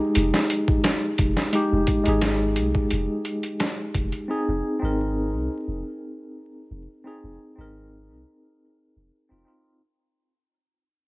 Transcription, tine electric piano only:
Already playing: G#3 D#4 G4 G#4
1.52 G#3 D#4 G4
2.03 G#3 D#4
2.09 G#4
4.28 C4 D#4 G#4
4.79 C4 D#4
4.85 A#4
7.04 C4 D#4 G#4
7.56 C4 D#4
7.61 A#4
9.29 C4 D#4 F4
9.45 C4 D#4 F4

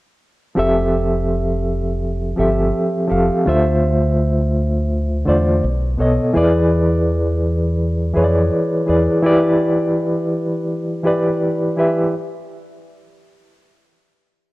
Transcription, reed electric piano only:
0.55 F3 C4 G4 A4 E5
2.36 F3 C4 G4 A4 E5
3.08 F3 C4 G4 A4 F5
3.45 D3 A3 F4 C5 E5
5.25 D3 A3 F4 C5 D5
5.98 B2 B3 A4 C#5 D#5
6.33 E3 E4 G#4 B4 D5
8.14 E3 E4 G#4 B4 C#5
8.24 D5
8.86 E3 E4 G#4 B4 D5
9.23 E3 E4 G4 B4 D5
11.03 E3 E4 G4 B4 D5
11.76 E3 E4 G4 B4 E5

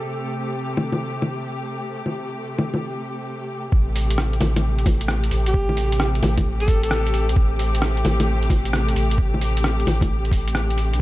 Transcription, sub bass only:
3.72 A1
4.41 A1
5.31 A1
6.22 A1
6.45 A1
7.29 C2
7.37 A1
8.04 A1
8.95 A1
9.86 A1
10.09 A1
10.92 C2

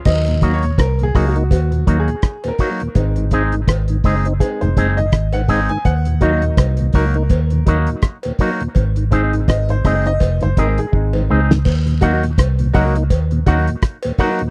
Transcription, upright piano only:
0.05 F#3 A#3 D#4 D#5
0.54 C#5
0.78 A#4
1.03 G#4
1.28 F#4
1.52 F#4
2.00 G#4
2.48 A#4
2.95 G#3 C4 D#4
4.40 G#3 C4 D#4 G#4
4.61 C5
4.97 D#5
5.33 F#5
5.70 G#5
5.85 F#5
6.21 F#3 A#3 D#4 D#5
6.95 A#4
7.66 F#3 A#3 D#4
9.11 G#3 C4 D#4
9.48 D#5
9.70 C5
9.86 D#5
10.07 D#5
10.43 C5
10.59 A#4
10.79 G#4
10.92 G#3 C4 D#4
12.01 F#4 A#4 D#5 F#5
12.73 F#4 A#4 D#5 F#5
13.46 F#4 A#4 D#5 F#5
14.19 F#4 A#4 D#5 F#5

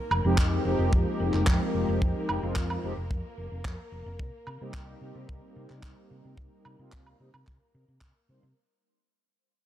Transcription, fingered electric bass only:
0.11 F1
0.24 F1
0.38 F2
0.65 F1
0.79 F1
0.93 F2
1.20 F1
1.34 F1
1.47 F2
1.74 F1
1.88 F1
2.02 F2
2.29 F1
2.43 F1
2.56 F2
2.84 F1
2.97 F1
3.11 F2
3.38 F1
3.52 F1
3.65 F2
3.92 F1
4.06 F1
4.20 C2
4.47 C3
4.61 C3
4.74 C2
5.01 C3
5.15 C3
5.29 C2
5.56 C3
5.70 C3
5.83 C2
6.11 C3
6.25 C3
6.38 C2
6.65 C3
6.79 C3
6.93 C2
7.20 C3
7.34 C3
7.48 C2
7.75 C3
7.88 C3
8.01 C2
8.29 C3
8.43 C3

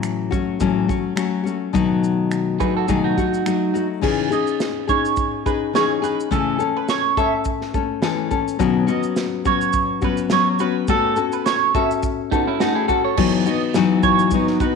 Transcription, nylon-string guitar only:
Already playing: A2 E3 F#3 A3 C#4 F#4
0.31 F#3 A3 C#4 F#4
0.60 A2 E3 F#3 A3 C#4 F#4
0.88 F#3 A3 C#4 F#4
1.16 F#3 A3 C#4 F#4
1.44 F#3 A3 C#4 F#4
1.73 B2 D#3 F#3 A3 D#4 F#4
2.59 F#3 A3 D#4 F#4
2.88 B2 D#3 F#3 A3 D#4 F#4
3.18 F#3 A3 D#4 F#4
3.46 F#3 A3 D#4 F#4
3.74 F#3 A3 D#4 F#4
4.01 C#3 E3 C#4 D#4 G#4
4.30 C#4 D#4 G#4
4.87 C#4 D#4 G#4
5.46 C#4 D#4 G#4
5.73 E3 C#4 D#4 G#4
6.02 C#4 D#4 G#4
6.31 C#3 E3 A3 C#4 A4
6.59 A3 C#4 A4
7.17 A3 C#4 A4
7.74 A3 C#4 A4
8.02 E3 A3 C#4 A4
8.31 A3 C#4 A4
8.59 B2 D#3 F#3 B3 C#4 F#4
8.87 F#3 B3 C#4 F#4
9.45 F#3 B3 C#4 F#4
10.02 F#3 B3 C#4 F#4
10.31 F#3 B3 C#4 F#4
10.60 F#3 B3 C#4 F#4
10.88 A3 C#4 F#4 A4
11.16 C#4 F#4 A4
11.75 C#4 F#4 A4
12.32 C#4 F#4 A4
12.61 A3 C#4 F#4 A4
12.88 C#4 F#4 A4
13.17 E3 F#3 B3 D#4 F#4
13.46 B3 D#4 F#4
13.75 E3 F#3 B3 D#4 F#4
14.33 F#3 B3 D#4 F#4
14.61 B3 D#4 F#4

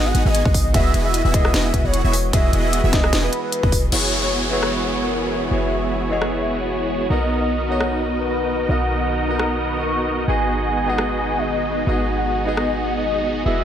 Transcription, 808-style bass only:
Already playing: G#1
0.15 G#1
0.26 G#1
0.45 G#1
0.74 E1
0.94 E1
1.25 E1
1.54 E1
1.74 E1
1.85 E1
2.04 E1
2.33 E1
2.53 E1
2.84 E1
3.13 E1
3.63 E1
3.92 F#1
5.51 F#1
7.10 B1
8.69 B1
10.28 G#1
11.87 G#1
13.46 E1

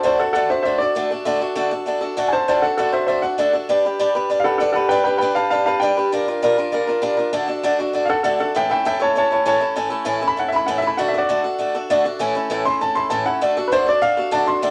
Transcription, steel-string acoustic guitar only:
0.03 D3 A3 D4 F#4 A4
0.19 D4 F#4 A4
0.35 D3 A3 D4 F#4 A4
0.50 D4 F#4 A4
0.65 A3 D4 F#4 A4
0.80 D4 F#4 A4
0.95 D3 A3 D4 F#4 A4
1.11 D4 F#4 A4
1.25 D3 A3 D4 F#4 A4
1.41 D4 F#4 A4
1.55 D3 A3 D4 F#4 A4
1.71 D4 F#4 A4
1.86 A3 D4 F#4 A4
2.01 D4 F#4 A4
2.17 D3 A3 D4 F#4 A4
2.32 D4 F#4 A4
2.48 D3 A3 D4 F#4 A4
2.63 D4 F#4 A4
2.78 D3 A3 D4 F#4 A4
2.92 D4 F#4 A4
3.08 A3 D4 F#4 A4
3.23 D4 F#4 A4
3.38 D3 A3 D4 F#4 A4
3.53 D4 F#4 A4
3.69 G3 D4 G4 B4
3.85 D4 G4 B4
3.99 G3 D4 G4 B4
4.15 D4 G4 B4
4.30 G3 D4 G4 B4
4.45 D4 G4 B4
4.60 G3 D4 G4 B4
4.75 D4 G4 B4
4.91 G3 D4 G4 B4
5.06 D4 G4 B4
5.21 G3 D4 G4 B4
5.36 D4 G4 B4
5.51 G3 D4 G4 B4
5.67 D4 G4 B4
5.82 G3 D4 G4 B4
5.97 D4 G4 B4
6.12 G3 D4 F4 A#4
6.28 D4 F4 A#4
6.42 G3 D4 F4 A#4
6.58 D4 F4 A#4
6.72 G3 D4 F4 A#4
6.87 D4 F4 A#4
7.02 G3 D4 F4 A#4
7.17 D4 F4 A#4
7.33 D3 A3 D4 F#4 A4
7.48 D4 F#4 A4
7.63 D3 A3 D4 F#4 A4
7.79 D4 F#4 A4
7.93 A3 D4 F#4 A4
8.08 D4 F#4 A4
8.24 D3 A3 D4 F#4 A4
8.39 D4 F#4 A4
8.55 A2 E3 A3 C#4 E4 A4
8.69 A3 C#4 E4 A4
8.85 A2 E3 A3 C#4 E4 A4
9.00 A3 C#4 E4 A4
9.15 A3 C#4 E4 A4
9.31 A3 C#4 E4 A4
9.45 A2 E3 A3 C#4 E4 A4
9.61 A3 C#4 E4 A4
9.76 A2 E3 A3 C#4 E4 A4
9.90 A3 C#4 E4 A4
10.05 A2 E3 A3 C#4 E4 A4
10.21 A3 C#4 E4 A4
10.36 A3 C#4 E4 A4
10.52 A3 C#4 E4 A4
10.68 A2 E3 A3 C#4 E4 A4
10.82 A3 C#4 E4 A4
10.98 D3 A3 D4 F#4 A4
11.14 D4 F#4 A4
11.29 D3 A3 D4 F#4 A4
11.44 D4 F#4 A4
11.59 A3 D4 F#4 A4
11.75 D4 F#4 A4
11.90 D3 A3 D4 F#4 A4
12.05 D4 F#4 A4
12.19 A2 E3 A3 C#4 E4 A4
12.35 A3 C#4 E4 A4
12.50 A2 E3 A3 C#4 E4 A4
12.66 A3 C#4 E4 A4
12.81 A3 C#4 E4 A4
12.95 A3 C#4 E4 A4
13.10 A2 E3 A3 C#4 E4 A4
13.26 A3 C#4 E4 A4
13.41 D3 A3 D4 F#4 A4
13.57 D4 F#4 A4
13.72 D3 A3 D4 F#4 A4
13.86 D4 F#4 A4
14.01 A3 D4 F#4 A4
14.17 D4 F#4 A4
14.31 D3 A3 D4 F#4 A4
14.46 D4 F#4 A4
14.62 D3 A3 D4 F#4 A4

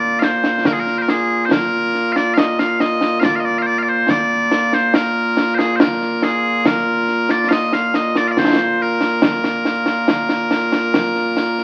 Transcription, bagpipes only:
Already playing: A#2 A#3 F4 D5
0.19 F5
0.24 C5
0.66 A#4
0.73 G#4
0.80 A#4
0.98 A#4 C5
1.09 G#4
1.45 C5
1.52 A#4
2.12 D5 F5
2.34 F5
2.39 D#5
2.59 F5
2.81 D#5
3.20 F5
3.24 D5
3.36 F5
3.40 D#5
3.45 D5
3.59 C5 F5
3.66 D5
3.79 F5
3.83 D5
3.89 C5
4.10 D5
4.74 C5
4.95 A#4
5.55 G#4 C5
5.76 C5
5.80 A#4
6.23 G#4
6.66 A#4
7.31 D5
7.49 D#5 F5
7.74 F5
7.96 D#5
8.18 D5
8.28 D5 F5
8.38 C5
8.82 A#4

